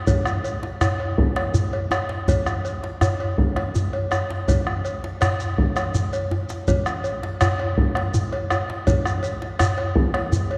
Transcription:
0.07 bombo low medium
0.07 cowbell medium
0.07 djembe bass medium
0.07 shekere medium
0.25 bombo rim medium
0.25 djembe tone medium
0.25 shekere soft
0.44 cowbell soft
0.44 shekere soft
0.63 bombo rim soft
0.63 djembe slap medium
0.81 bombo rim medium
0.81 cowbell medium
0.81 djembe tone medium
0.81 djembe bass medium
0.81 shekere medium
1.00 bombo rim soft
1.00 cowbell soft
1.00 djembe slap soft
1.18 bombo low loud
1.36 bombo rim medium
1.36 cowbell soft
1.36 djembe slap medium
1.54 djembe bass medium
1.54 shekere medium
1.73 bombo rim soft
1.73 cowbell medium
1.91 bombo rim medium
1.91 cowbell soft
1.91 djembe tone medium
1.91 shekere soft
2.09 djembe slap medium
2.28 bombo low medium
2.28 cowbell medium
2.28 djembe bass medium
2.28 shekere medium
2.46 bombo rim medium
2.46 djembe tone medium
2.46 shekere soft
2.65 cowbell soft
2.65 shekere soft
2.83 bombo rim soft
2.83 djembe slap medium
3.01 bombo rim medium
3.01 cowbell soft
3.01 djembe tone medium
3.01 djembe bass medium
3.01 shekere medium
3.20 bombo rim soft
3.20 cowbell soft
3.38 bombo low loud
3.56 bombo rim medium
3.56 cowbell soft
3.56 djembe slap medium
3.56 djembe tone medium
3.75 djembe bass medium
3.75 shekere medium
3.93 bombo rim soft
3.93 cowbell soft
4.11 bombo rim medium
4.11 cowbell soft
4.11 djembe tone medium
4.11 shekere soft
4.30 djembe slap medium
4.48 bombo low medium
4.48 cowbell medium
4.48 djembe bass medium
4.48 shekere medium
4.67 bombo rim medium
4.67 djembe tone soft
4.85 cowbell soft
4.85 djembe slap soft
4.85 shekere soft
5.04 djembe slap medium
5.21 bombo rim loud
5.21 cowbell medium
5.21 djembe tone medium
5.21 djembe bass medium
5.21 shekere medium
5.40 djembe slap soft
5.40 shekere soft
5.58 bombo rim soft
5.58 bombo low medium
5.58 djembe slap soft
5.76 bombo rim medium
5.76 cowbell soft
5.76 djembe slap medium
5.76 djembe tone soft
5.76 shekere soft
5.94 bombo rim soft
5.94 djembe slap soft
5.94 djembe bass medium
5.94 shekere medium
6.13 cowbell soft
6.13 shekere soft
6.31 djembe tone medium
6.49 bombo rim soft
6.49 djembe slap medium
6.49 shekere soft
6.68 bombo low medium
6.68 cowbell medium
6.68 djembe bass medium
6.68 shekere medium
6.86 bombo rim medium
6.86 djembe tone medium
6.86 shekere soft
7.04 cowbell soft
7.04 shekere soft
7.23 bombo rim soft
7.23 djembe slap medium
7.41 bombo rim loud
7.41 cowbell medium
7.41 djembe tone medium
7.41 djembe bass medium
7.41 shekere medium
7.59 bombo rim soft
7.59 cowbell soft
7.59 djembe slap soft
7.78 bombo low loud
7.95 bombo rim medium
7.95 cowbell medium
7.95 djembe slap medium
7.95 djembe tone soft
8.14 djembe bass medium
8.14 shekere medium
8.32 bombo rim soft
8.32 cowbell medium
8.50 bombo rim medium
8.50 cowbell soft
8.50 djembe tone medium
8.50 shekere soft
8.70 djembe slap medium
8.87 bombo low medium
8.87 cowbell medium
8.87 djembe bass medium
8.87 shekere medium
9.05 bombo rim medium
9.05 djembe tone medium
9.05 shekere soft
9.23 cowbell medium
9.23 shekere soft
9.42 bombo rim soft
9.42 djembe slap medium
9.59 bombo rim loud
9.59 cowbell medium
9.59 djembe tone medium
9.59 djembe bass medium
9.59 shekere medium
9.78 bombo rim soft
9.78 cowbell soft
9.78 djembe slap soft
9.96 bombo low loud
10.14 bombo rim medium
10.14 cowbell soft
10.14 djembe slap medium
10.32 djembe bass medium
10.32 shekere medium
10.50 bombo rim soft
10.50 cowbell soft

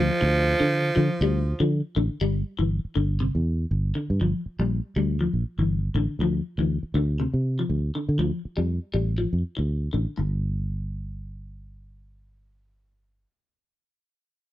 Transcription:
0.00 0.17 F3 medium
0.00 1.68 F3 loud
0.21 0.53 D2 loud
0.21 muted clean electric guitar stroke loud
0.60 0.79 D3 medium
0.60 0.90 D3 medium
0.96 1.08 D3 loud
0.96 1.16 F3 medium
1.21 1.52 D2 loud
1.21 1.41 G3 medium
1.60 1.80 D3 medium
1.60 1.79 F3 medium
1.96 2.07 A1 loud
1.96 2.16 D3 medium
2.21 2.42 G1 medium
2.21 2.41 G3 medium
2.59 2.79 G1 medium
2.59 2.78 E3 medium
2.85 muted fingered electric bass stroke soft
2.95 3.27 G1 medium
2.95 3.15 D3 medium
3.20 3.40 C3 medium
3.35 3.64 E2 medium
3.71 3.91 G1 medium
3.95 4.15 D3 medium
4.10 4.19 G2 medium
4.21 4.32 G1 medium
4.21 4.40 F3 medium
4.46 muted fingered electric bass stroke soft
4.59 4.79 A#1 medium
4.59 4.78 G3 medium
4.96 5.27 D2 medium
4.96 5.15 G3 medium
5.21 5.40 F3 medium
5.33 5.43 A#1 medium
5.58 5.88 G1 medium
5.58 5.78 E3 medium
5.95 6.05 A1 loud
5.95 6.15 D3 medium
6.19 6.40 D2 medium
6.19 6.40 F3 medium
6.58 6.78 D2 medium
6.58 6.78 E3 medium
6.83 muted fingered electric bass stroke soft
6.94 7.25 D2 medium
6.94 7.14 D3 medium
7.20 7.39 C3 medium
7.34 7.63 C3 medium
7.59 7.78 F3 medium
7.69 7.90 D2 medium
7.95 8.14 D3 medium
8.09 8.18 D3 medium
8.19 8.30 D2 medium
8.19 8.38 F3 medium
8.45 muted fingered electric bass stroke soft
8.57 8.78 F2 medium
8.57 8.76 G3 medium
8.94 9.25 A1 medium
8.94 9.13 G3 medium
9.18 9.38 F3 medium
9.33 9.42 F2 medium
9.57 9.88 D2 medium
9.57 muted clean electric guitar stroke medium
9.93 10.04 A1 medium
9.93 10.12 D3 medium
10.17 13.25 G1 medium
10.17 10.33 G2 medium

